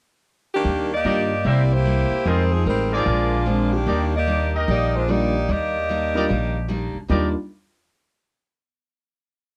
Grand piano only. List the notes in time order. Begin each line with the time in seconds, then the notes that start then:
1.04 A#3 D4 F4 G4
3.46 G#3 C4 D4 F4
5.08 G3 A#3 D4 F4
6.15 G3 A#3 D4 F4
7.09 G3 A#3 D4 D#4 F4